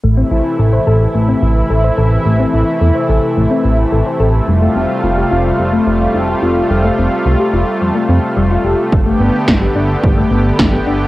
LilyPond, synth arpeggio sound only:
\new Staff \with { instrumentName = "Synth arpeggio sound" } { \time 4/4 \key a \minor \tempo 4 = 108 a16 c'16 e'16 r16 a'16 c''16 a'16 r16 a16 c'16 e'16 r16 a'16 c''16 a'16 r16 | a16 c'16 e'16 r16 a'16 c''16 a'16 r16 a16 c'16 e'16 r16 a'16 c''16 a'16 r16 | g16 a16 c'16 r16 f'16 g'16 f'16 r16 g16 a16 c'16 r16 f'16 g'16 f'16 r16 | g16 a16 c'16 r16 f'16 g'16 f'16 r16 g16 a16 c'16 r16 g16 f'16 g'16 r16 |
g16 a16 b16 r16 d'16 g'16 d'16 r16 g16 a16 b16 r16 d'16 g'16 d'16 r16 | }